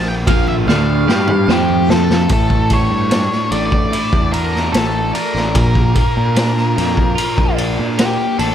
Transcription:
Already playing: picked electric bass A#1, clean electric guitar A#2 F3, tanpura A#2 F3 A3 C4 E4
0.08 lead electric guitar G5
0.27 picked electric bass A#1, clean electric guitar A#2 F3 A#3, lead electric guitar F5, kick, ride, high conga, low conga
0.48 lead electric guitar E5, high conga
0.55 tanpura A2
0.67 picked electric bass D2, clean electric guitar D3 A3 D4, lead electric guitar F5, snare, high conga
1.08 picked electric bass G2, clean electric guitar G3 D4 G4, snare
1.27 mid tom, high conga
1.47 picked electric bass F2, clean electric guitar F3 C4 F4, snare, high conga
1.52 lead electric guitar G4
1.69 high conga
1.78 tanpura A3
1.89 lead electric guitar A4, snare, low conga
2.09 snare, low conga
2.29 picked electric bass A1, clean electric guitar A2, lead electric guitar A4, kick, ride
2.50 kick
2.70 clean electric guitar A3, lead electric guitar C#5, kick, ride
2.91 picked electric bass G2
3.11 clean electric guitar D4, snare, ride
3.32 snare
3.52 picked electric bass A1, clean electric guitar A3, lead electric guitar D5, ride
3.72 kick
3.92 clean electric guitar E4, ride
4.13 picked electric bass E2, kick
4.32 clean electric guitar D4, lead electric guitar A#4, ride
4.55 snare
4.72 picked electric bass A1, clean electric guitar A3, lead electric guitar A4, snare, ride
5.13 clean electric guitar D4, lead electric guitar A#4, ride
5.35 picked electric bass A1, snare
5.54 picked electric bass A#1, clean electric guitar A#2, kick, ride
5.75 kick
5.95 clean electric guitar A#3, kick, ride
6.17 picked electric bass A#2
6.35 clean electric guitar D4, snare, ride
6.57 snare
6.76 picked electric bass F2, clean electric guitar A#3, snare, ride
6.97 kick
7.15 clean electric guitar F4, ride
7.38 picked electric bass A#1, kick
7.57 clean electric guitar D4, ride
7.79 picked electric bass A#2
7.98 clean electric guitar A#3, lead electric guitar G4, snare, ride
8.39 picked electric bass A1, clean electric guitar D4, lead electric guitar A4, ride

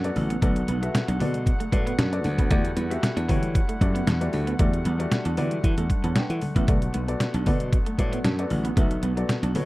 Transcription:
Already playing: woodwind section D3 F#3 A3 B3 F#5
0.04 grand piano B3 F#4 A4 D5, closed hi-hat, muted conga
0.16 slap bass A1, muted clean electric guitar stroke, open hi-hat, high conga, low conga
0.30 clean electric guitar B3, closed hi-hat
0.42 slap bass B1, woodwind section C#3, clean electric guitar A3, grand piano B3 F#4 A4 D5, kick, closed hi-hat, low conga
0.55 closed hi-hat, muted conga
0.68 slap bass B1, clean electric guitar B3, closed hi-hat, high conga
0.82 grand piano B3 F#4 A4 E5, muted clean electric guitar stroke, closed hi-hat
0.94 muted clean electric guitar stroke, snare, closed hi-hat
1.08 slap bass B1, clean electric guitar D4, closed hi-hat
1.20 slap bass B2, grand piano B3 F#4 A4 D5, clean electric guitar B3, open hi-hat, low conga
1.34 closed hi-hat, high conga
1.46 kick, closed hi-hat, muted conga
1.60 clean electric guitar A3, closed hi-hat, muted conga
1.72 slap bass A2, grand piano B3 F#4 A4 D5, muted clean electric guitar stroke, kick, closed hi-hat, high conga
1.87 clean electric guitar B3, closed hi-hat
1.98 slap bass F#2, clean electric guitar D4, snare, closed hi-hat, muted conga, high conga
2.12 grand piano B3 F#4 A4 D5, closed hi-hat
2.24 slap bass D2, muted clean electric guitar stroke, open hi-hat, high conga, low conga
2.38 clean electric guitar B3, kick, closed hi-hat
2.50 slap bass E2, woodwind section G3 E4, grand piano A3 F#4 G4 D5, clean electric guitar A3, kick, closed hi-hat, muted conga, low conga
2.64 closed hi-hat, muted conga
2.76 slap bass E2, clean electric guitar B3, closed hi-hat, high conga
2.90 grand piano A3 F#4 G4 E5, muted clean electric guitar stroke, closed hi-hat
3.03 muted clean electric guitar stroke, snare, closed hi-hat
3.17 slap bass E2, clean electric guitar D4, closed hi-hat, muted conga
3.29 slap bass E3, grand piano A3 F#4 G4 C#5, clean electric guitar B3, kick, open hi-hat, low conga
3.43 closed hi-hat, high conga
3.54 kick, closed hi-hat, muted conga
3.69 clean electric guitar A3, closed hi-hat, muted conga
3.81 slap bass F#2, grand piano A3 F#4 G4 D5, muted clean electric guitar stroke, kick, closed hi-hat, high conga
3.95 clean electric guitar B3, closed hi-hat
4.07 slap bass E2, clean electric guitar D4, snare, closed hi-hat, muted conga, high conga
4.21 grand piano A3 F#4 G4 D5, closed hi-hat, muted conga
4.33 slap bass D2, muted clean electric guitar stroke, open hi-hat, high conga, low conga
4.47 clean electric guitar B3, closed hi-hat
4.59 slap bass E2, grand piano A3 F#4 G4 D5, clean electric guitar A3, woodwind section D4, kick, closed hi-hat, low conga
4.74 closed hi-hat
4.85 slap bass E2, clean electric guitar B3, closed hi-hat, high conga
4.99 grand piano A3 F#4 G4 D5, muted clean electric guitar stroke, closed hi-hat
5.12 muted clean electric guitar stroke, snare, closed hi-hat, muted conga
5.25 slap bass E2, clean electric guitar D4, closed hi-hat
5.37 slap bass E3, grand piano A3 F#4 G4 D5, clean electric guitar B3, open hi-hat, low conga
5.51 closed hi-hat, high conga
5.63 slap bass E3, kick, closed hi-hat, muted conga
5.78 slap bass E2, clean electric guitar A3, closed hi-hat
5.90 muted clean electric guitar stroke, kick, closed hi-hat, high conga
6.04 slap bass E2, clean electric guitar B3, grand piano C#5 A5, closed hi-hat
6.16 clean electric guitar D4, grand piano B4 G5, snare, closed hi-hat, muted conga, high conga
6.30 slap bass E3, grand piano A4 F#5, closed hi-hat
6.41 muted clean electric guitar stroke, open hi-hat, high conga, low conga
6.56 slap bass A1, clean electric guitar B3, grand piano G4 E5, kick, closed hi-hat
6.67 slap bass B1, woodwind section F#3 B3, clean electric guitar A3, grand piano B3 F#4 A4 D5, kick, closed hi-hat, muted conga, low conga
6.82 closed hi-hat, muted conga
6.94 slap bass B1, clean electric guitar B3, closed hi-hat, high conga
7.08 grand piano B3 F#4 A4 D5, muted clean electric guitar stroke, closed hi-hat
7.20 muted clean electric guitar stroke, snare, closed hi-hat
7.34 slap bass B1, clean electric guitar D4, closed hi-hat
7.46 slap bass B2, grand piano B3 F#4 A4 D5, clean electric guitar B3, kick, open hi-hat, low conga
7.60 closed hi-hat, high conga
7.73 kick, closed hi-hat
7.86 clean electric guitar A3, closed hi-hat, muted conga
7.98 slap bass A2, grand piano B3 F#4 A4 D5, muted clean electric guitar stroke, kick, closed hi-hat, high conga
8.12 clean electric guitar B3, closed hi-hat
8.24 slap bass F#2, clean electric guitar D4, snare, closed hi-hat, high conga
8.38 grand piano B3 F#4 A4 D5, closed hi-hat, muted conga
8.50 slap bass A1, muted clean electric guitar stroke, open hi-hat, high conga, low conga
8.65 clean electric guitar B3, closed hi-hat
8.77 slap bass B1, clean electric guitar A3, grand piano B3 F#4 A4 E5, kick, closed hi-hat, low conga
8.91 closed hi-hat
9.03 slap bass B1, clean electric guitar B3, closed hi-hat, high conga
9.17 grand piano B3 F#4 A4 D5, muted clean electric guitar stroke, closed hi-hat
9.29 muted clean electric guitar stroke, snare, closed hi-hat
9.43 slap bass B1, clean electric guitar D4, closed hi-hat, muted conga
9.55 slap bass B2, grand piano B3 F#4 A4 C#5, clean electric guitar B3, open hi-hat, low conga

